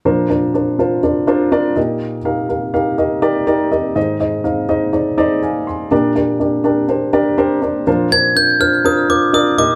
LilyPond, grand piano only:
<<
  \new Staff \with { instrumentName = "Grand piano" } { \time 4/4 \key bes \mixolydian \tempo 4 = 123 << { r1 | r1 | r2. <f'' aes''>8 <aes'' c'''>8~ | <aes'' c'''>8 r2. r8 |
r1 | } \\ { <d' f' bes' c''>8 <d' f' bes' d''>8 <d' f' bes' c''>8 <d' f' bes' c''>8 <d' f' bes' d''>8 <d' f' bes' c''>8 <d' f' bes' d''>8 <ees' g' bes' ees''>8~ | <ees' g' bes' ees''>8 <ees' g' bes' f''>8 <ees' g' bes' f''>8 <ees' g' bes' f''>8 <ees' g' bes' ees''>8 <ees' g' bes' d''>8 <ees' g' bes' d''>8 <ees' g' bes' ees''>8 | <ees' aes' c'' ees''>8 <ees' aes' c'' ees''>8 <ees' aes' c'' f''>8 <ees' aes' c'' ees''>8 <ees' aes' c'' d''>8 <ees' aes' c'' d''>8 r4 | <d' g' bes' d''>8 <d' g' bes' d''>8 <d' g' bes' d''>8 <d' g' bes' d''>8 <d' g' bes' c''>8 <d' g' bes' d''>8 <d' g' bes' c''>8 <d' g' bes' d''>8 |
<d' f' bes' c''>8 <d' f' bes' c''>8 <d' f' bes' c''>8 <d' f' bes' c''>8 <d' f' bes' c''>8 <d' f' bes' c''>8 <d' f' bes' d''>8 <ees' g' bes' ees''>8 | } >> }
  \new Staff \with { instrumentName = "Grand piano" } { \clef bass \time 4/4 \key bes \mixolydian <bes, f>2.~ <bes, f>8 <bes, bes>8~ | <bes, bes>2.~ <bes, bes>8 r8 | <aes, ees>1 | <bes, bes>1 |
<bes, f>2.~ <bes, f>8 <bes, bes>8 | }
>>